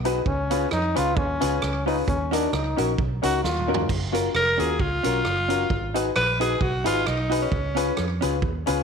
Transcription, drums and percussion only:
0.05 closed hi-hat
0.26 kick
0.51 closed hi-hat
0.71 cross-stick
0.96 closed hi-hat
1.17 kick
1.41 closed hi-hat
1.62 cross-stick
1.88 open hi-hat
2.08 kick, hi-hat pedal
2.33 closed hi-hat
2.53 cross-stick
2.78 closed hi-hat
2.98 kick
3.23 closed hi-hat
3.44 snare
3.59 mid tom
3.74 floor tom
3.89 kick, crash
4.14 closed hi-hat
4.35 cross-stick
4.60 closed hi-hat
4.79 kick
5.04 closed hi-hat
5.25 cross-stick
5.50 closed hi-hat
5.70 kick
5.95 closed hi-hat
6.16 cross-stick
6.41 closed hi-hat
6.61 kick
6.86 closed hi-hat
7.07 cross-stick
7.32 closed hi-hat
7.52 kick
7.77 closed hi-hat
7.97 cross-stick
8.22 closed hi-hat
8.42 kick
8.67 closed hi-hat

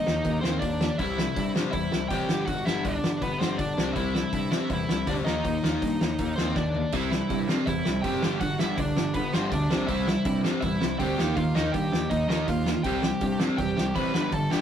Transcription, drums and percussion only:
0.07 snare
0.24 kick, open hi-hat
0.44 snare
0.62 kick, open hi-hat
0.81 snare
0.99 kick, open hi-hat
1.18 snare
1.36 kick, open hi-hat
1.56 snare
1.73 kick, open hi-hat
1.92 snare
2.10 kick, open hi-hat
2.29 snare
2.47 kick, open hi-hat
2.67 snare
2.85 kick, open hi-hat
3.04 snare
3.22 kick, open hi-hat
3.41 snare
3.59 kick, open hi-hat
3.78 snare
3.96 kick, open hi-hat
4.15 snare
4.33 kick, open hi-hat
4.52 snare
4.70 kick, open hi-hat
4.89 snare
5.07 kick, open hi-hat
5.26 snare
5.45 kick, open hi-hat
5.64 snare
5.82 kick, open hi-hat
6.01 snare
6.18 kick, open hi-hat
6.38 snare
6.56 kick, snare
6.74 floor tom
6.92 kick, open hi-hat, crash
7.12 snare
7.30 kick, open hi-hat
7.49 snare
7.67 kick, open hi-hat
7.85 snare
8.04 kick, open hi-hat
8.23 snare
8.40 kick, open hi-hat
8.59 snare
8.78 kick, open hi-hat
8.96 snare
9.14 kick, open hi-hat
9.33 snare
9.52 kick, open hi-hat
9.71 snare
9.88 kick, open hi-hat
10.07 snare
10.25 kick, open hi-hat
10.44 snare
10.62 kick, open hi-hat
10.82 snare
11.00 kick, open hi-hat
11.19 snare
11.37 kick, open hi-hat
11.56 snare
11.74 kick, open hi-hat
11.93 snare
12.11 kick, open hi-hat
12.30 snare
12.48 kick, open hi-hat
12.66 snare
12.84 kick, open hi-hat
13.03 snare
13.21 kick, open hi-hat
13.40 snare
13.58 kick, open hi-hat
13.78 snare
13.96 kick, open hi-hat
14.14 snare
14.32 kick, open hi-hat
14.51 snare

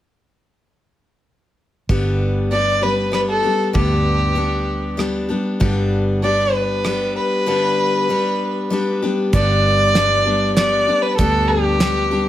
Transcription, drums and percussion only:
1.89 kick
3.13 cross-stick
3.75 kick
4.99 cross-stick
5.61 kick
6.85 cross-stick
9.33 kick, closed hi-hat
9.95 snare, closed hi-hat
10.57 snare, closed hi-hat
11.19 kick, closed hi-hat
11.80 snare, closed hi-hat

